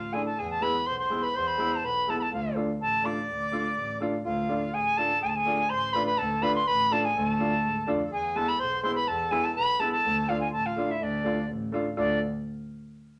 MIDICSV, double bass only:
0, 0, Header, 1, 2, 480
1, 0, Start_track
1, 0, Tempo, 482703
1, 374, Time_signature, 2, 2, 24, 8
1, 13121, End_track
2, 0, Start_track
2, 0, Title_t, "Double bass"
2, 0, Program_c, 0, 43
2, 0, Note_on_c, 0, 33, 79
2, 181, Note_off_c, 0, 33, 0
2, 374, Note_on_c, 0, 40, 99
2, 663, Note_off_c, 0, 40, 0
2, 858, Note_on_c, 0, 35, 89
2, 1147, Note_off_c, 0, 35, 0
2, 1337, Note_on_c, 0, 40, 94
2, 1627, Note_off_c, 0, 40, 0
2, 1820, Note_on_c, 0, 35, 98
2, 2109, Note_off_c, 0, 35, 0
2, 2299, Note_on_c, 0, 38, 100
2, 2589, Note_off_c, 0, 38, 0
2, 2778, Note_on_c, 0, 33, 90
2, 3069, Note_off_c, 0, 33, 0
2, 3262, Note_on_c, 0, 38, 83
2, 3552, Note_off_c, 0, 38, 0
2, 3740, Note_on_c, 0, 33, 94
2, 4030, Note_off_c, 0, 33, 0
2, 4224, Note_on_c, 0, 38, 102
2, 4513, Note_off_c, 0, 38, 0
2, 4706, Note_on_c, 0, 33, 83
2, 4994, Note_off_c, 0, 33, 0
2, 5186, Note_on_c, 0, 38, 95
2, 5474, Note_off_c, 0, 38, 0
2, 5669, Note_on_c, 0, 33, 100
2, 5957, Note_off_c, 0, 33, 0
2, 6145, Note_on_c, 0, 38, 109
2, 6434, Note_off_c, 0, 38, 0
2, 6630, Note_on_c, 0, 33, 102
2, 6917, Note_off_c, 0, 33, 0
2, 7113, Note_on_c, 0, 38, 117
2, 7399, Note_off_c, 0, 38, 0
2, 7586, Note_on_c, 0, 44, 89
2, 7802, Note_off_c, 0, 44, 0
2, 7832, Note_on_c, 0, 41, 89
2, 8045, Note_off_c, 0, 41, 0
2, 8071, Note_on_c, 0, 40, 99
2, 8357, Note_off_c, 0, 40, 0
2, 8553, Note_on_c, 0, 35, 94
2, 8839, Note_off_c, 0, 35, 0
2, 9021, Note_on_c, 0, 40, 97
2, 9310, Note_off_c, 0, 40, 0
2, 9500, Note_on_c, 0, 35, 87
2, 9789, Note_off_c, 0, 35, 0
2, 9980, Note_on_c, 0, 38, 116
2, 10269, Note_off_c, 0, 38, 0
2, 10460, Note_on_c, 0, 33, 90
2, 10748, Note_off_c, 0, 33, 0
2, 10938, Note_on_c, 0, 38, 102
2, 11227, Note_off_c, 0, 38, 0
2, 11417, Note_on_c, 0, 33, 99
2, 11705, Note_off_c, 0, 33, 0
2, 11899, Note_on_c, 0, 38, 107
2, 12122, Note_off_c, 0, 38, 0
2, 13121, End_track
0, 0, End_of_file